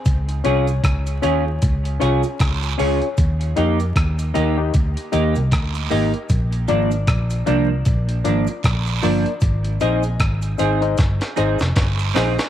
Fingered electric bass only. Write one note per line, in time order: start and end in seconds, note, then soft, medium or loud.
0.06 0.41 C#2 medium
0.46 0.80 C2 medium
0.84 1.19 C#2 medium
1.24 1.58 D#2 medium
1.63 1.98 C#2 loud
2.02 2.22 C2 medium
2.41 2.75 C#2 medium
2.80 3.00 C#2 medium
3.19 3.53 D#2 medium
3.58 3.92 F2 medium
3.96 4.31 D#2 medium
4.36 4.71 D#2 medium
4.75 4.95 D2 loud
5.14 5.34 D#2 medium
5.37 5.51 C2 medium
5.53 5.87 D2 medium
5.92 6.12 G#1 medium
6.31 6.65 A#1 loud
6.71 7.05 G#1 medium
7.08 7.43 A#1 medium
7.48 7.82 C2 medium
7.87 8.21 A#1 loud
8.26 8.46 G#1 medium
8.65 8.99 A#1 medium
9.04 9.24 G1 medium
9.42 9.77 G#1 loud
9.82 10.17 A#1 medium
10.20 10.55 G#1 medium
10.60 10.95 G#1 medium
10.99 11.19 G1 loud
11.39 11.58 G#1 medium
11.61 11.75 F1 medium
11.77 12.11 G1 medium
12.16 12.36 A#1 medium